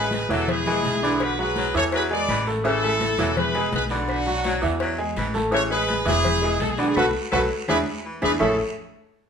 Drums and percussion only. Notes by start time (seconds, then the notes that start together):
0.11 cowbell, high conga, short guiro
0.29 cowbell, high conga, short guiro
0.48 cowbell, high conga, low conga, long guiro, claves
0.66 cowbell, high conga, low conga
0.83 cowbell, high conga, short guiro
1.02 high conga, short guiro
1.20 cowbell, high conga, long guiro, claves
1.38 high conga
1.56 cowbell, high conga, short guiro
1.75 short guiro
1.92 cowbell, high conga, long guiro, claves
2.11 high conga
2.29 cowbell, high conga, short guiro, claves
2.46 short guiro
2.65 cowbell, high conga, long guiro
2.83 high conga, claves
3.01 cowbell, high conga, short guiro
3.18 cowbell, high conga, short guiro
3.36 cowbell, high conga, low conga, long guiro, claves
3.54 cowbell, high conga
3.72 cowbell, high conga, short guiro
3.89 short guiro
4.08 cowbell, high conga, long guiro, claves
4.27 high conga
4.44 cowbell, high conga, short guiro
4.62 short guiro
4.80 cowbell, high conga, long guiro, claves
4.99 high conga
5.16 cowbell, high conga, short guiro, claves
5.34 high conga, short guiro
5.52 cowbell, high conga, long guiro
5.71 high conga, claves
5.88 cowbell, high conga, short guiro
6.06 cowbell, high conga, short guiro
6.25 cowbell, high conga, low conga, claves
6.43 cowbell, high conga
6.59 cowbell, high conga, short guiro
6.77 high conga, short guiro
6.95 cowbell, high conga, long guiro, claves
7.32 cowbell, high conga, claves
7.68 cowbell, high conga, long guiro, claves
8.22 cowbell, high conga, long guiro, claves
8.40 low bongo, low conga, long guiro, claves